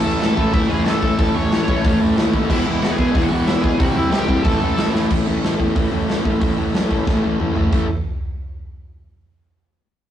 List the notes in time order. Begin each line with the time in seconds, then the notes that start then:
Already playing: A2 E3 A3
0.04 A1 A2 E3 A3 C#4 E4 A4 A5
0.21 A1 A2 E3 A3 C#4 E4 A4 A5, snare, open hi-hat
0.37 A2 E3 A3 C#4 E4, kick
0.53 A1 A2 E3 A3 C#4 E4 E5, kick, open hi-hat
0.69 A1 A2 E3 A3 C#4 E4 G#4 G#5
0.86 A1 A2 E3 A3 C#4 E4 A4 A5, snare, open hi-hat
1.02 A1 A2 E3 A3 C#4 E4, kick
1.18 A1 A2 E3 A3 C#4 E4 A4 A5, kick, open hi-hat
1.34 A1 A2 E3 A3 C#4 E4 C#5 C#6
1.52 A1 A2 E3 A3 C#4 E4, snare, open hi-hat
1.68 A1 A2 E3 A3 C#4 E4, kick
1.84 A1 A2 E3 A3 C#4 E4, kick, open hi-hat
2.00 A1 A2 E3 A3 C#4 E4
2.17 D#2 A2 E3 A3 C#4 E4, snare, open hi-hat
2.34 A2 E3 A3 C#4 E4, kick
2.49 E1 E2 B2 E3 G#3 B3 E4 E5, kick, crash
2.66 E1 E2 B2 E3 G#3 B3 E4
2.81 E1 E2 B2 E3 G#3 B3 E4 F#4 F#5, snare, open hi-hat
2.91 G#4 G#5
2.98 E2 B2 E3 G#3 B3 E4, kick
3.14 E1 E2 B2 E3 G#3 B3 E4 G#4 G#5, kick, open hi-hat
3.22 F#4 F#5
3.30 E1 E2 B2 E3 G#3 B3 E4
3.45 E1 E2 B2 E3 G#3 B3 E4 E5, snare, open hi-hat
3.62 E1 E2 B2 E3 G#3 B3 E4 G#4 G#5, kick
3.78 C2 C3 E3 G3 C4 E4 F#4 F#5, kick, open hi-hat
3.94 C2 C3 E3 G3 C4 E4 E5
4.11 C2 C3 E3 G3 C4 E4 G4 G5, snare, open hi-hat
4.18 G4 G5
4.28 C2 C3 E3 G3 C4 E4, kick
4.43 A1 A2 E3 A3 C#4 E4 A4 A5, kick, open hi-hat
4.61 A1 A2 E3 A3 C#4 E4
4.77 A1 A2 E3 A3 C#4 E4, snare, open hi-hat
4.93 A2 E3 A3 C#4 E4, snare
5.10 A1 A2 E3 A3 C#4 E4, kick, crash
5.27 A1 A2 E3 A3 C#4 E4
5.42 A1 A2 E3 A3 C#4 E4, snare, open hi-hat
5.59 E2 A2 E3 A3 C#4 E4, kick
5.75 A1 A2 E3 A3 C#4 E4, kick, open hi-hat
5.92 A1 A2 E3 A3 C#4 E4
6.07 A1 A2 E3 A3 C#4 E4, snare, open hi-hat
6.25 A1 A2 E3 A3 C#4 E4, kick
6.41 A1 A2 E3 A3 C#4 E4, kick, open hi-hat
6.57 A2 E3 A3 C#4 E4
6.73 F#2 A2 E3 A3 C#4 E4, snare, open hi-hat
6.90 A1 A2 E3 A3 C#4 E4, kick
7.06 A2 E3 A3 C#4 E4, kick, snare
7.24 A1 A2 E3 A3 C#4 E4
7.39 A1 A2 E3 A3 C#4 E4, mid tom
7.56 A1 A2 E3 A3 C#4 E4, floor tom
7.72 A1 A2 E3 A3 C#4 E4 A4, kick, crash